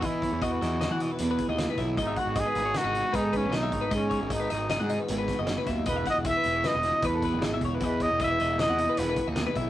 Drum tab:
HH |xxxxxxxxxx|xxxxxxxxxx|xxxxxxxxxx|xxxxxxxxxx|
SD |---oo---oo|--o-o---o-|----o-oooo|-o--oo--o-|
BD |ooo----o-o|ooo---oo-o|ooo----o-o|ooo---oo-o|

HH |xxxxxxxxxx|
SD |----o-o-o-|
BD |ooo----o-o|